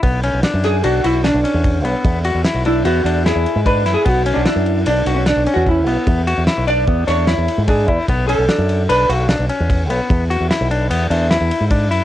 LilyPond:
<<
  \new Staff \with { instrumentName = "Hollow-body jazz guitar" } { \time 5/4 \key b \dorian \tempo 4 = 149 r4. gis'8 fis'8 e'8 d'2~ | d'8 r4 e'8 fis'4 gis'4 \tuplet 3/2 { b'4 gis'8 } | \tuplet 3/2 { fis'4 d'8 } e'4 \tuplet 3/2 { d'4 cis'8 d'4 fis'8 } e'4~ | e'8 r4 d''4 cis''4. gis'8 r8 |
r8 a'4. b'8 r2 r8 | r1 r4 | }
  \new Staff \with { instrumentName = "Clean electric guitar" } { \time 5/4 \key b \dorian b8 cis'8 d'4 d'8 fis'8 d'8 cis'4 b8~ | b8 fis'8 e'8 d'8 b8 d'8 e'4 d'8 e'8 | b8 cis'8 d'4 d'8 fis'8 d'8 cis'4 b8~ | b8 fis'8 e'8 d'8 b8 d'8 e'4 d'8 e'8 |
b8 cis'8 d'4 d'8 fis'8 d'8 cis'4 b8~ | b8 fis'8 e'8 d'8 b8 d'8 e'4 d'8 e'8 | }
  \new Staff \with { instrumentName = "Fingered electric bass" } { \clef bass \time 5/4 \key b \dorian b,,8. b,,16 r16 fis,8. b,,8 b,,8. b,,16 r16 e,8. b,,16 r16 | e,8. e,16 r16 b,,8. e,8 e,8. e,16 r16 gis,8. fis,16 r16 | b,,8. b,,16 r16 fis,8. b,,8 b,,8. b,,16 r16 e,8. b,,16 r16 | e,8. e,16 r16 b,,8. e,8 e,8. e,16 r16 gis,8. e,16 r16 |
b,,8. b,,16 r16 fis,8. b,,8 b,,8. b,,16 r16 e,8. b,,16 r16 | e,8. e,16 r16 b,,8. e,8 e,8. e,16 r16 gis,8. fis,16 r16 | }
  \new DrumStaff \with { instrumentName = "Drums" } \drummode { \time 5/4 <bd cymr>8 cymr8 <cymr sn>8 <cymr sn>8 cymr8 cymr8 <cymr sn>8 cymr8 <bd cymr>8 cymr8 | <bd cymr>8 cymr8 <cymr sn>8 cymr8 cymr8 cymr8 <cymr sn>8 cymr8 <bd cymr>8 <cymr sn>8 | <bd cymr>8 cymr8 <cymr sn>8 cymr8 cymr8 cymr8 <cymr sn>8 cymr8 <bd cymr>8 cymr8 | <bd cymr>8 cymr8 <cymr sn>8 cymr8 <bd cymr>8 <cymr sn>8 <cymr sn>8 cymr8 <bd cymr>8 <bd cymr>8 |
<bd cymr>8 cymr8 <cymr sn>8 cymr8 cymr8 cymr8 <cymr sn>8 cymr8 <bd cymr>8 cymr8 | <bd cymr>8 cymr8 <cymr sn>8 cymr8 cymr8 cymr8 <cymr sn>8 cymr8 <bd cymr>8 cymr8 | }
>>